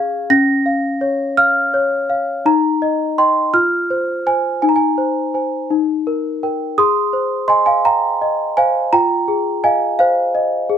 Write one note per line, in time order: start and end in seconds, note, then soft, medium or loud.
0.00 0.27 C#4 medium
0.00 0.34 G#4 medium
0.00 0.34 F5 medium
0.00 0.34 C#6 loud
0.00 0.33 F6 loud
0.00 0.31 G#6 loud
0.30 2.41 C#4 medium
0.30 1.38 A#6 loud
0.66 1.24 F5 medium
1.01 1.59 C#5 medium
1.37 1.95 F5 medium
1.37 2.45 F6 loud
1.74 2.31 C#5 medium
2.10 2.46 F5 medium
2.46 3.51 D#4 medium
2.46 3.18 A#5 loud
2.82 3.17 D#5 medium
3.18 3.51 D#5 medium
3.18 3.51 G5 medium
3.18 3.54 C6 loud
3.54 4.59 F4 medium
3.54 4.26 F6 loud
3.90 4.25 C5 medium
4.26 4.59 C5 medium
4.26 4.61 G#5 medium
4.62 5.67 D#4 medium
4.62 4.69 G#5 medium
4.69 4.76 A#5 medium
4.76 5.33 G#5 medium
4.98 5.33 C5 medium
5.34 5.67 C5 soft
5.34 5.67 G#5 medium
5.70 6.75 D#4 medium
6.07 6.42 A#4 medium
6.43 6.75 A#4 medium
6.43 6.75 G5 medium
6.78 8.88 G#4 medium
6.78 7.46 C6 medium
6.78 7.50 D#6 loud
7.13 7.71 C5 medium
7.48 8.06 D#5 medium
7.48 7.65 G#5 medium
7.48 7.67 C6 loud
7.66 7.84 F5 medium
7.66 7.85 G#5 loud
7.85 8.21 F5 medium
7.85 8.53 G5 medium
7.85 8.57 A#5 loud
8.22 8.78 D#5 medium
8.57 8.93 C5 medium
8.57 8.91 F5 medium
8.57 8.93 G#5 loud
8.93 10.78 F4 medium
8.93 9.60 G5 medium
8.93 9.64 A#5 loud
9.28 9.85 G#4 medium
9.64 10.21 D#5 medium
9.64 9.97 F5 medium
9.64 9.99 G#5 loud
9.99 10.78 C5 medium
9.99 10.78 F5 loud
10.35 10.78 D#5 medium
10.69 10.78 G#4 medium